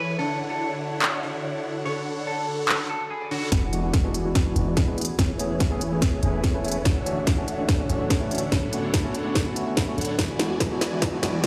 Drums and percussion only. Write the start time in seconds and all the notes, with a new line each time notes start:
1.02 clap
2.69 clap
3.52 kick, snare, closed hi-hat
3.73 closed hi-hat
3.94 kick, snare, closed hi-hat
4.14 closed hi-hat
4.35 kick, snare, closed hi-hat
4.56 closed hi-hat
4.77 kick, snare, closed hi-hat
4.98 closed hi-hat
5.01 closed hi-hat
5.05 closed hi-hat
5.19 kick, snare, closed hi-hat
5.39 closed hi-hat
5.60 kick, snare, closed hi-hat
5.81 closed hi-hat
6.02 kick, snare, closed hi-hat
6.23 closed hi-hat
6.44 kick, snare, closed hi-hat
6.65 closed hi-hat
6.68 closed hi-hat
6.72 closed hi-hat
6.85 kick, snare, closed hi-hat
7.06 closed hi-hat
7.27 kick, snare, closed hi-hat
7.48 closed hi-hat
7.69 kick, snare, closed hi-hat
7.90 closed hi-hat
8.10 kick, snare, closed hi-hat
8.31 closed hi-hat
8.35 closed hi-hat
8.38 closed hi-hat
8.52 kick, snare, closed hi-hat
8.73 closed hi-hat
8.94 kick, snare, closed hi-hat
9.15 closed hi-hat
9.35 kick, snare, closed hi-hat
9.56 closed hi-hat
9.77 kick, snare, closed hi-hat
9.98 closed hi-hat
10.01 closed hi-hat
10.05 closed hi-hat
10.19 kick, snare, closed hi-hat
10.39 snare, closed hi-hat
10.60 kick, snare, closed hi-hat
10.81 snare, closed hi-hat
11.02 kick, snare, closed hi-hat
11.23 snare, closed hi-hat
11.44 snare, closed hi-hat